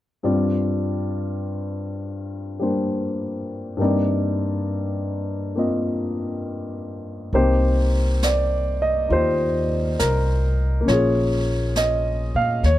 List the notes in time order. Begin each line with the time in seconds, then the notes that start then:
0.23 G2 G3 C4 F4 D5
2.60 G3 A#3 D4 C5
3.77 G2 G3 A#3 C4
3.81 D#4 D5
5.56 A#3 C4 F4 D#5
7.33 C2 A#3 C4 D#4 G4 C5, brush sweep
8.23 D5, snare, hi-hat pedal
8.82 D#5
9.09 D#2 D#4 F4 G4 C5, brush sweep
9.99 C2 A#4, snare, hi-hat pedal
10.81 A#3 C#4
10.88 A#1 F4 C#5, brush sweep, snare
10.92 G#4
11.76 D#5, snare, hi-hat pedal
12.35 A#2 F5
12.63 D#2 C#5, brush sweep, snare